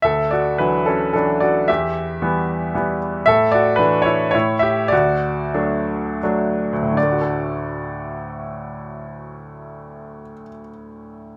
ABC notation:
X:1
M:3/4
L:1/8
Q:1/4=101
K:D
V:1 name="Grand piano"
[Ae] [Fd] B [CA] [DA] [Fd] | [Ge]4- [Ge] z | [Ae] [Fd] [DB] [Ec] [Ec] [Ge] | [Fd]4 z2 |
d6- | d6 |]
V:2 name="Grand piano" clef=bass
D,,2 [E,F,D]2 [E,F,]2 | E,,2 [E,G,B,]2 [E,G,B,]2 | A,,2 [E,A,]2 A,,2 | D,,2 [F,A,D]2 [F,A,D]2 |
[D,,A,,D,A,FA]6- | [D,,A,,D,A,FA]6 |]